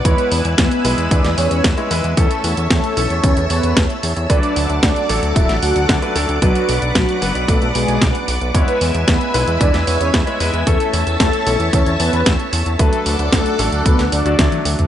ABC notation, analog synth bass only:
X:1
M:4/4
L:1/16
Q:1/4=113
K:Emix
V:1 name="Analog synth bass" clef=bass
E,, z E,, E,, E,, z B,,, E,, E,, E,, E,, E,, E,, z E,, E,, | E,, z E,, E,, E,, z B,,, E,, E,, E,, E,, E,, E,, z E,, E,, | D,, z D,, D,, D,, z A,,, D,, D,,, A,,, D,, D,, D,, z D,, D,, | B,,, z B,,, B,,, B,,, z F,,, B,,, B,,, B,,, B,,, B,,, B,,, z B,,, B,,, |
E,, z E,, E,, E,, z B,,, E,, E,, E,, E,, E,, E,, z E,, E,, | E,, z E,, E,, E,, z B,,, E,, E,, E,, E,, E,, E,, z E,, E,, | D,, z D,, D,, D,, z A,,, D,, D,, D,, D,, D,, D,, z D,, D,, |]